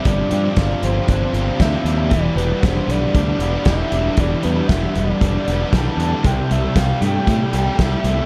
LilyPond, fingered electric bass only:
\new Staff \with { instrumentName = "Fingered electric bass" } { \clef bass \time 4/4 \key e \phrygian \tempo 4 = 116 g,,8 g,8 g,,8 g,,8 g,,8 g,,8 d,8 ees,8 | e,,8 e,,8 e,,8 b,,8 d,8 e,,8 e,,8 e,,8 | e,,8 e,8 e,,8 e,,8 e,,8 e,,8 b,,8 e,8 | c,8 c,8 c,8 g,8 a,8 c,8 c,8 c,8 | }